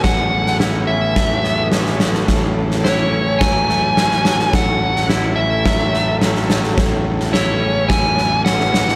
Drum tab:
SD |o--oo---o-o-oooo|o--oo---o-o-oooo|o--oo---o-o-oooo|o--oo---o-o-oooo|
BD |o-------o-------|o-------o-------|o-------o-------|o-------o-------|